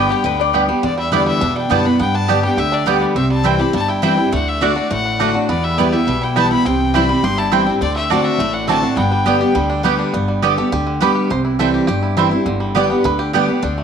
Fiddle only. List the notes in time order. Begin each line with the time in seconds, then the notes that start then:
Already playing: G5
0.85 D5
0.99 E5
1.14 D5
1.28 E5
1.57 G5
1.71 A5
1.86 B5
2.01 G5
2.15 A5
2.44 G5
2.59 E5
2.74 D5
3.17 E5
3.32 A5
3.46 G5
3.61 B5
3.75 A5
3.89 G5
4.04 G5
4.34 F#5
4.48 E5
4.62 D5
4.92 F#5
5.49 D5
5.64 E5
5.78 D5
5.93 E5
6.23 G5
6.37 A5
6.52 B5
6.66 G5
6.95 B5
7.24 C6
7.38 A5
7.53 G5
7.82 D5
7.96 E5
8.10 D5
8.24 E5
8.54 F#5
8.68 A5
8.98 G5